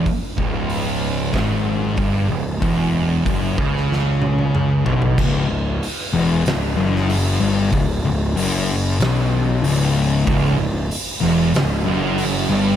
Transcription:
<<
  \new Staff \with { instrumentName = "Distorted electric guitar" } { \clef bass \time 4/4 \key cis \minor \tempo 4 = 94 r8 cis,4. gis,4 g,8 cis,8 | e,4 fis,8 cis2 b,8 | r1 | r1 |
cis,8 cis,8 r8 e,8 cis,8 fis,4 g,8 | }
  \new Staff \with { instrumentName = "Distorted electric guitar" } { \clef bass \time 4/4 \key cis \minor r8 cis,4. gis,4 g,8 cis,8 | e,4 fis,8 cis2 b,8 | cis,8 cis,8 r8 e,8 cis,8 fis,4 g,8 | cis,8 cis,8 fis,4 b,4 cis,4 |
cis,8 cis,8 r8 e,8 cis,8 fis,4 g,8 | }
  \new Staff \with { instrumentName = "Picked electric bass" } { \clef bass \time 4/4 \key cis \minor r8 cis,,4. gis,,4 g,,8 cis,,8 | e,,4 fis,,8 cis,2 b,,8 | cis,,8 cis,,8 r8 e,,8 cis,,8 fis,,4 g,,8 | cis,,8 cis,,8 fis,,4 b,,4 cis,,4 |
cis,,8 cis,,8 r8 e,,8 cis,,8 fis,,4 g,,8 | }
  \new DrumStaff \with { instrumentName = "Drums" } \drummode { \time 4/4 <hho bd>8 bd8 hho4 <hho bd sn>4 <hho bd>4 | <hho bd>4 <hho bd>8 bd16 sn16 sn8 tommh16 tommh16 toml8 tomfh16 tomfh16 | <cymc bd>4 hho4 <hho sn>8. sn16 hho4 | <hho bd>4 hho4 <hho sn>4 hho4 |
<hho bd>4 hho4 <hho sn>4 hho4 | }
>>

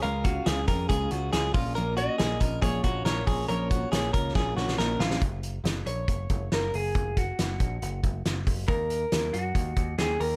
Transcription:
<<
  \new Staff \with { instrumentName = "Clean electric guitar" } { \time 4/4 \key ais \phrygian \tempo 4 = 139 eis''2.~ eis''8 r8 | r8 dis''4. cis''4 cis''4 | cis''2. r4 | r4. cis''4. ais'8 gis'8~ |
gis'8 fis'2 r4. | ais'4. fis'4. gis'8 ais'8 | }
  \new Staff \with { instrumentName = "Clean electric guitar" } { \time 4/4 \key ais \phrygian ais'8 fis'8 gis'8 ais'8 gis'8 fis'8 gis'8 eis'8 | ais'8 fis'8 gis'8 ais'8 gis'8 fis'8 ais'8 gis'8 | ais'8 fis'8 gis'8 ais'8 gis'8 fis'8 ais'8 eis'8 | r1 |
r1 | r1 | }
  \new Staff \with { instrumentName = "Steel-string acoustic guitar" } { \time 4/4 \key ais \phrygian <cis gis cis' eis' gis'>8 <cis' eis' gis'>8 <gis cis' eis' gis'>8 <cis' eis' gis'>8 <cis gis cis' eis' gis'>8 <cis' eis' gis'>8 <gis cis' eis' gis'>8 <ais cis' eis' ais'>8 | <ais, eis ais cis' eis' ais'>8 <ais cis' eis' ais'>8 <ais cis' eis' ais'>8 <ais cis' eis' ais'>8 <ais, eis ais cis' eis' ais'>8 <ais cis' eis' ais'>8 <ais cis' eis' ais'>8 <ais cis' eis' ais'>8 | <ais, eis ais cis' eis' ais'>8 <ais cis' eis' ais'>8 <ais cis' eis' ais'>8 <ais cis' eis' ais'>8 <ais, eis ais cis' eis' ais'>8 <ais cis' eis' ais'>8 <ais cis' eis' ais'>8 <ais cis' eis' ais'>8 | r1 |
r1 | r1 | }
  \new Staff \with { instrumentName = "Picked electric bass" } { \clef bass \time 4/4 \key ais \phrygian cis,4 cis,8 eis,8 cis,8 cis,8 cis,8 ais,,8~ | ais,,4 ais,,8 ais,,8 ais,,8 ais,,8 ais,,8 ais,,8 | ais,,4 ais,,8 cis,8 ais,,8 ais,,8 ais,,8 ais,,8 | fis,,4 fis,,8 ais,,8 fis,,8 fis,,8 fis,,8 fis,,8 |
fis,,4 fis,,8 ais,,8 fis,,8 fis,,8 fis,,8 fis,,8 | dis,4 dis,8 fis,8 dis,8 dis,8 dis,8 dis,8 | }
  \new DrumStaff \with { instrumentName = "Drums" } \drummode { \time 4/4 hh8 <hh bd>8 <hh sn>8 <hh bd>8 <hh bd>8 hh8 <hh sn>8 <hho bd>8 | hh8 hh8 <hh sn>8 <hh bd>8 <hh bd>8 <hh bd>8 <hh sn>8 <hho bd>8 | hh8 <hh bd>8 <hh sn>8 <hh bd>8 <bd sn>8 sn16 sn16 sn8 sn16 sn16 | <hh bd>8 hh8 <hh sn>8 hh8 <hh bd>8 <hh bd>8 <hh sn>8 hho8 |
<hh bd>8 <hh bd>8 <hh sn>8 <hh bd>8 hh8 <hh bd>8 <hh sn>8 <hho bd>8 | <hh bd>8 hh8 <hh sn>8 hh8 <hh bd>8 <hh bd>8 <hh sn>8 hho8 | }
>>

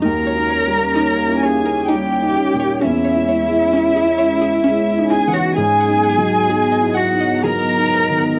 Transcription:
<<
  \new Staff \with { instrumentName = "Violin section" } { \time 3/4 \key gis \minor \tempo 4 = 65 ais''4. gis''8 g''4 | e''2~ e''8 gis''16 fis''16 | gis''4. fis''8 ais''4 | }
  \new Staff \with { instrumentName = "Synth pluck" } { \time 3/4 \key gis \minor dis'16 cis''16 cis''16 r16 dis'16 ais'16 cis''16 ais'16 dis'16 r16 g'16 cis''16 | cis'16 cis''16 cis''16 r16 cis'16 gis'16 cis''16 gis'16 cis'16 r16 e'16 cis''16 | gis'16 fis''16 fis''16 r16 gis'16 dis''16 fis''16 dis''16 gis'16 r16 b'16 fis''16 | }
  \new Staff \with { instrumentName = "Cello" } { \time 3/4 \key gis \minor ais'4. gis'8 g'4 | e'2~ e'8 gis'16 fis'16 | gis'4. fis'8 ais'4 | }
  \new Staff \with { instrumentName = "Felt piano" } { \time 3/4 \key gis \minor \tuplet 3/2 { dis,8 dis'8 g8 dis'8 e'8 dis'8 g8 dis'8 ais,8 } | \tuplet 3/2 { e,8 e'8 gis8 e'4 e'8 gis8 dis'8 e8 } | \tuplet 3/2 { gis,8 dis'8 fis8 dis'8 e'8 dis'8 fis8 dis'8 dis8 } | }
  \new Staff \with { instrumentName = "Analog synth pad" } { \time 3/4 \key gis \minor << { <cis' cis''>2.~ | <cis' cis''>2. | <b dis''>2. | } \\ { ais2. | gis2. | fis2. | } >> }
>>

